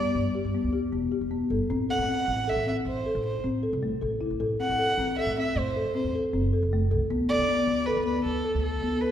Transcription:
Already playing: B3 D5
0.15 G2
0.35 G4
0.45 G2
0.54 B3
0.64 D2
0.73 G4
0.93 E1 B3
1.12 G4
1.21 E1
1.31 B3
1.50 G1 A4
1.70 A1 C4
1.89 A4 F#5
1.99 A2
2.08 C4
2.28 A1
2.48 A4 E5
2.56 A1
2.67 C4 E5
2.85 A1 C5
3.06 A4
3.15 A1
3.26 C5
3.44 A1 C4
3.63 A4
3.73 C2
3.83 A3
4.01 A1 A4
4.21 E4
4.30 A1
4.40 A1 A4
4.60 C4 F#5
4.69 A1
4.79 A4
4.98 A1 C4
5.18 A4 E5
5.26 A2
5.38 C4 E5
5.56 A2 C5
5.76 A4
5.85 A2
5.95 C4 C5
6.04 E2
6.15 A4
6.33 F#1 C4
6.53 A4
6.63 F#1
6.73 A3
6.91 C2 A4
7.10 D2 B3
7.29 A4 D5
7.38 D3
7.49 B3
7.67 D2
7.86 A4 B4
7.97 D2
8.06 B3 B4
8.24 D2 A4
8.45 A4
8.54 D2
8.62 A4
8.83 D2 B3
9.01 A4 B4

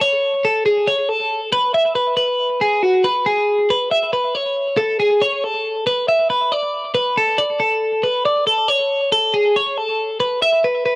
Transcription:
0.01 C#5
0.45 A4
0.66 G#4
0.88 C#5
1.09 A4
1.53 B4
1.74 E5
1.95 B4
2.17 B4
2.61 G#4
2.83 F#4
3.04 B4
3.26 G#4
3.70 B4
3.91 E5
4.13 B4
4.35 C#5
4.77 A4
5.00 G#4
5.22 C#5
5.44 A4
5.87 B4
6.08 E5
6.30 B4
6.52 D5
6.94 B4
7.17 A4
7.38 D5
7.60 A4
8.03 B4
8.25 D5
8.47 A4
8.68 C#5
9.12 A4
9.34 G#4
9.56 C#5
9.78 A4
10.20 B4
10.42 E5
10.64 B4
10.86 B4

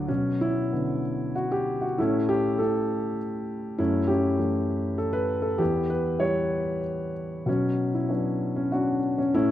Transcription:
Already playing: D2 A2 D3 F#3 D4 F#4 B4 D5
0.08 B2 F#3 C#4
0.41 C#4 E4
0.73 D3 B3 C#4
1.36 F#4
1.52 G4
1.81 F#4
1.98 A2 A3 C#4 E4
2.29 G4
2.59 A3 C#4 E4 A4
3.78 F#2 A3 C#4 E4
4.08 C#4 E4 G4
4.38 E3 A3 E4
4.98 A4
5.13 B4
5.42 A4
5.58 E2 B3 E4 G4
5.90 B4
6.19 G3 B3 E4 G4 C#5
7.46 B2 F#3 C#4
7.94 E4
8.09 F#3 B3 D4 C#5
8.56 C#4
8.72 C#4 D4 F#4
9.18 C#4
9.34 A2 A3 C#4 E4

